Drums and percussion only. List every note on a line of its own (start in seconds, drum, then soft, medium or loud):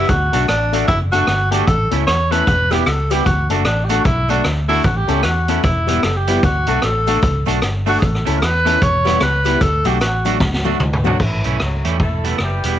0.09 kick loud
0.09 closed hi-hat medium
0.09 cabasa medium
0.33 closed hi-hat medium
0.33 cabasa medium
0.48 cross-stick loud
0.48 closed hi-hat medium
0.48 cabasa medium
0.73 closed hi-hat medium
0.73 cabasa medium
0.87 kick loud
0.87 closed hi-hat medium
0.87 cabasa medium
1.12 closed hi-hat loud
1.12 cabasa medium
1.27 cross-stick loud
1.27 closed hi-hat medium
1.27 cabasa soft
1.52 closed hi-hat loud
1.52 cabasa medium
1.68 kick loud
1.68 closed hi-hat medium
1.68 cabasa medium
1.91 closed hi-hat medium
1.91 cabasa medium
2.07 cross-stick loud
2.07 closed hi-hat medium
2.07 cabasa medium
2.32 closed hi-hat medium
2.32 cabasa medium
2.47 kick loud
2.47 closed hi-hat medium
2.47 cabasa medium
2.71 cross-stick medium
2.71 closed hi-hat medium
2.71 cabasa medium
2.86 cross-stick loud
2.86 closed hi-hat medium
2.86 cabasa medium
3.10 closed hi-hat loud
3.10 cabasa medium
3.26 kick loud
3.26 closed hi-hat medium
3.26 cabasa medium
3.50 closed hi-hat medium
3.50 cabasa medium
3.65 cross-stick loud
3.65 closed hi-hat medium
3.65 cabasa medium
3.89 closed hi-hat loud
3.89 cabasa loud
4.04 kick loud
4.04 closed hi-hat medium
4.04 cabasa medium
4.28 closed hi-hat medium
4.28 cabasa medium
4.44 cross-stick loud
4.44 closed hi-hat medium
4.44 cabasa soft
4.69 open hi-hat medium
4.69 cabasa medium
4.84 kick loud
4.84 closed hi-hat medium
4.84 cabasa medium
5.08 closed hi-hat medium
5.08 cabasa medium
5.23 cross-stick loud
5.23 closed hi-hat medium
5.23 cabasa medium
5.48 closed hi-hat medium
5.48 cabasa medium
5.63 kick loud
5.63 closed hi-hat medium
5.63 cabasa medium
5.88 closed hi-hat medium
5.88 cabasa medium
6.03 cross-stick loud
6.03 closed hi-hat medium
6.03 cabasa medium
6.27 closed hi-hat loud
6.27 cabasa medium
6.43 kick loud
6.43 closed hi-hat medium
6.43 cabasa soft
6.67 closed hi-hat medium
6.67 cabasa medium
6.82 cross-stick loud
6.82 closed hi-hat medium
6.82 cabasa medium
7.07 closed hi-hat loud
7.07 cabasa medium
7.22 kick loud
7.22 closed hi-hat medium
7.22 cabasa medium
7.46 closed hi-hat loud
7.46 cabasa medium
7.62 cross-stick loud
7.62 closed hi-hat medium
7.62 cabasa soft
7.86 open hi-hat medium
7.86 cabasa medium
8.02 kick loud
8.02 closed hi-hat medium
8.02 cabasa medium
8.15 cross-stick medium
8.26 closed hi-hat medium
8.26 cabasa medium
8.42 cross-stick loud
8.42 closed hi-hat medium
8.42 cabasa medium
8.66 closed hi-hat loud
8.66 cabasa loud
8.82 kick loud
8.82 closed hi-hat medium
8.82 cabasa medium
9.05 cross-stick medium
9.05 closed hi-hat loud
9.05 cabasa medium
9.20 cross-stick loud
9.20 closed hi-hat medium
9.20 cabasa soft
9.45 closed hi-hat loud
9.45 cabasa medium
9.61 kick loud
9.61 closed hi-hat medium
9.61 cabasa medium
9.84 closed hi-hat medium
9.84 cabasa medium
10.00 cross-stick loud
10.00 closed hi-hat medium
10.00 cabasa medium
10.25 closed hi-hat medium
10.25 cabasa medium
10.40 kick loud
10.40 snare medium
10.40 cabasa medium
10.54 snare medium
10.64 cabasa medium
10.80 mid tom medium
10.80 cabasa soft
10.93 floor tom medium
11.04 floor tom loud
11.04 cabasa medium
11.19 kick loud
11.19 crash medium
11.44 closed hi-hat medium
11.60 cross-stick loud
11.85 closed hi-hat medium
12.00 kick loud
12.24 closed hi-hat medium
12.38 cross-stick loud
12.63 closed hi-hat loud